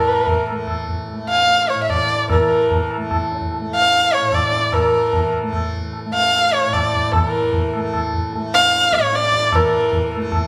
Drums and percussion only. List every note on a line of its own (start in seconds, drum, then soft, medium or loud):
0.27 tabla tin medium
0.27 tabla ge medium
0.47 tabla na medium
0.67 tabla na medium
0.67 tabla ge medium
0.88 tabla ge soft
1.08 tabla tin medium
1.49 tabla tin medium
1.89 tabla tin medium
1.89 tabla ge medium
2.30 tabla na medium
2.30 tabla ge medium
2.71 tabla tin medium
2.71 tabla ge medium
2.91 tabla na medium
3.11 tabla na medium
3.11 tabla ge medium
3.32 tabla te medium
3.41 tabla ge soft
3.52 tabla tin medium
3.92 tabla tin medium
4.32 tabla na medium
4.32 tabla ge medium
4.52 tabla te medium
4.73 tabla na loud
4.73 tabla ge medium
5.13 tabla tin medium
5.13 tabla ge medium
5.33 tabla na medium
5.53 tabla na medium
5.53 tabla ge medium
5.73 tabla ge soft
5.93 tabla tin medium
6.33 tabla tin medium
6.73 tabla na medium
6.73 tabla ge medium
6.93 tabla ge soft
7.13 tabla na loud
7.13 tabla ge medium
7.53 tabla tin medium
7.53 tabla ge medium
7.73 tabla na medium
7.94 tabla na medium
7.94 tabla ge medium
8.13 tabla ge medium
8.33 tabla tin medium
8.73 tabla te medium
8.83 tabla te medium
8.93 tabla ke medium
9.03 tabla te medium
9.13 tabla te medium
9.22 tabla te medium
9.33 tabla ke medium
9.42 tabla te medium
9.53 tabla na loud
9.53 tabla ge medium
9.92 tabla tin medium
9.92 tabla ge medium
10.12 tabla na medium
10.22 tabla ke medium
10.32 tabla na medium
10.32 tabla ge medium